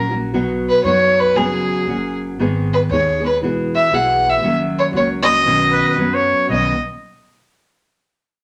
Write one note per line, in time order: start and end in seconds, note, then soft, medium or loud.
0.00 0.33 A#1 loud
0.00 0.10 F#3 medium
0.00 0.11 A#3 medium
0.00 0.11 A#4 medium
0.11 0.32 F#3 soft
0.11 0.34 A#3 soft
0.11 0.33 C#4 soft
0.11 0.33 F#4 medium
0.33 0.66 B1 loud
0.33 0.84 B2 medium
0.33 0.83 F#3 medium
0.33 0.84 B3 medium
0.33 0.84 D#4 loud
0.33 0.84 F#4 medium
0.69 0.83 B4 loud
0.84 1.36 F#2 loud
0.84 1.35 F#3 medium
0.84 1.35 B3 medium
0.84 1.36 D#4 medium
0.84 1.36 F#4 medium
0.84 1.21 C#5 loud
1.19 1.37 B4 loud
1.35 1.68 F#1 medium
1.35 1.87 F#2 medium
1.35 1.87 C#3 medium
1.35 1.87 F#3 medium
1.35 1.87 B3 medium
1.35 1.87 C#4 medium
1.35 1.87 F#4 medium
1.35 2.15 G#4 medium
1.86 2.38 F#1 medium
1.86 2.38 F#3 medium
1.86 2.39 A#3 medium
1.86 2.39 C#4 medium
1.86 2.39 F#4 medium
2.38 2.72 G#1 medium
2.38 2.90 G#2 medium
2.38 2.91 D#3 medium
2.38 2.90 G#3 medium
2.38 2.91 B3 medium
2.38 2.91 D#4 medium
2.38 2.91 G#4 medium
2.73 2.81 B4 loud
2.89 3.43 D#2 loud
2.89 3.19 G#3 medium
2.89 3.19 B3 medium
2.89 3.20 D#4 medium
2.89 3.19 G#4 medium
2.89 3.22 C#5 medium
3.20 3.42 G#3 soft
3.20 3.42 B3 soft
3.20 3.43 D#4 soft
3.20 3.42 G#4 medium
3.25 3.37 B4 medium
3.41 3.74 E1 medium
3.41 3.90 E3 medium
3.41 3.92 B3 medium
3.41 3.93 F#4 medium
3.41 3.92 G#4 medium
3.75 3.95 E5 medium
3.92 4.43 B1 loud
3.92 4.43 E3 medium
3.92 4.44 B3 medium
3.92 4.44 F#4 medium
3.92 4.44 G#4 medium
3.92 4.31 F#5 medium
4.29 4.54 E5 medium
4.43 4.76 F#1 medium
4.43 4.94 F#2 medium
4.43 4.98 D#3 medium
4.43 4.93 F#3 medium
4.43 4.94 A#3 medium
4.43 4.95 C#4 medium
4.43 4.95 F#4 medium
4.79 4.86 C#5 medium
4.93 5.45 C#2 loud
4.93 5.22 F#3 medium
4.93 5.23 A#3 medium
4.93 5.22 C#4 medium
4.93 5.21 F#4 medium
4.93 5.09 C#5 medium
5.22 5.45 F#3 soft
5.22 5.45 A#3 soft
5.22 5.45 C#4 soft
5.22 5.45 F#4 medium
5.22 5.94 D#5 loud
5.45 5.79 B1 loud
5.45 5.97 B2 medium
5.45 6.03 D#3 medium
5.45 5.97 F#3 medium
5.45 5.99 B3 medium
5.45 5.99 C#4 medium
5.45 6.00 F#4 medium
5.72 5.88 B4 medium
5.89 6.16 B4 medium
5.96 6.31 F#2 loud
5.96 6.50 F#3 medium
5.96 6.50 B3 medium
5.96 6.51 C#4 medium
6.01 6.51 F#4 medium
6.14 6.49 C#5 loud
6.49 6.76 B1 medium
6.49 6.72 B2 medium
6.49 6.73 D#3 medium
6.49 6.73 F#3 medium
6.49 6.73 B3 medium
6.49 6.73 C#4 medium
6.49 6.73 F#4 medium
6.49 6.76 D#5 medium
6.49 6.77 D#5 medium